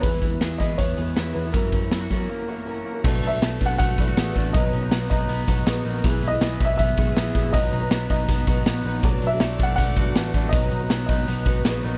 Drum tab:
CC |--------|--------|x-------|--------|
HH |xxxxxxxx|xxxx----|-xxxxxxx|xxxxxxxx|
SD |--o---o-|--o-----|--o---o-|--o---o-|
BD |oo-oo---|oo-o----|o--ooo-o|o--o-o--|

CC |--------|--------|--------|--------|
HH |xxxxxxxx|xxxxxxxo|xxxxxxxx|xxxxxxxx|
SD |--o---o-|--o---o-|--o---o-|--o---o-|
BD |o--ooo-o|o--ooo--|o--ooo-o|o--o-o--|